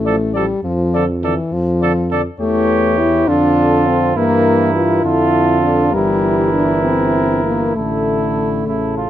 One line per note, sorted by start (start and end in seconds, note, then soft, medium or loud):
0.00 0.50 A1 medium
0.00 0.36 A3 medium
0.05 0.17 F3 soft
0.05 0.17 A4 medium
0.05 0.16 D5 soft
0.33 0.45 F3 soft
0.33 0.63 G3 medium
0.33 0.46 A4 soft
0.33 0.44 D5 medium
0.64 1.37 F2 medium
0.64 1.06 F3 medium
0.94 1.05 D3 medium
0.94 1.05 A4 soft
0.94 1.04 D5 soft
1.23 1.34 D3 soft
1.23 1.54 E3 medium
1.23 1.34 A4 soft
1.23 1.35 D5 soft
1.52 2.26 F2 medium
1.52 2.13 F3 medium
1.80 1.91 D3 medium
1.80 1.93 A4 medium
1.80 1.92 D5 soft
2.11 2.21 D3 medium
2.11 2.22 A4 medium
2.11 2.22 D5 medium
2.39 3.24 E2 medium
2.39 3.24 E3 medium
2.39 3.00 A3 medium
2.39 3.30 G4 medium
2.39 3.29 C#5 medium
2.99 3.29 E4 medium
3.28 4.14 F2 medium
3.28 4.18 D3 medium
3.28 3.88 D4 medium
3.28 4.18 F4 medium
3.28 4.16 A4 medium
3.87 4.16 C4 medium
4.16 5.02 G2 medium
4.16 5.05 E3 medium
4.16 4.74 A#3 medium
4.16 5.05 E4 medium
4.16 5.03 A#4 medium
4.75 5.06 F4 medium
5.04 5.96 F2 medium
5.04 5.92 D3 medium
5.04 5.62 E4 medium
5.04 5.92 F4 medium
5.04 5.95 A4 medium
5.63 5.94 D4 medium
5.92 7.75 G1 medium
5.92 7.71 E3 medium
5.92 6.52 G3 medium
5.92 7.72 E4 medium
5.92 7.75 A#4 medium
6.53 6.85 D4 medium
6.83 7.44 C4 medium
7.45 7.77 A#3 medium
7.75 8.65 A1 soft
7.75 8.69 D3 medium
7.75 9.10 A3 medium
7.75 8.66 E4 soft
7.75 8.50 A4 soft
8.67 9.10 A1 soft
8.67 9.10 C#3 soft
8.67 8.95 E4 soft
8.67 9.10 A4 soft
8.97 9.10 F4 soft